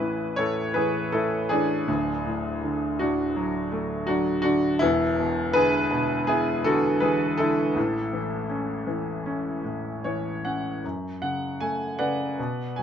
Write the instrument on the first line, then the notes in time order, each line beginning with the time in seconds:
grand piano
Already playing: A1 A2 C#4 E4 B4
0.00 E3
0.36 A2 A4 C#5
0.74 E3 G#4 B4
1.12 A2 E4 A4
1.49 E3 D4 G#4
1.88 D1 D2
2.26 A2
2.63 D3
2.99 A2 D4 F#4
3.36 F#3
3.72 A3
4.07 F#3 D4 F#4
4.42 D3 D4 F#4
4.79 E1 E2 B3 E4
5.18 B2
5.53 D3 G#4 B4
5.91 B2
6.27 B3 E4 G#4
6.64 D3 F#4 A4
7.00 E3 G#4 B4
7.38 D3 E4 A4
7.76 A1 A2
8.13 E3
8.49 C#4
8.87 E3
9.26 C#4
9.64 A2
10.04 E3 C#5
10.45 C#4 F#5
10.84 F#2
11.22 C#3 F#5
11.60 A3 G#5
11.99 C#3 B4 D5 F#5
12.39 B2
12.76 F#3 G#5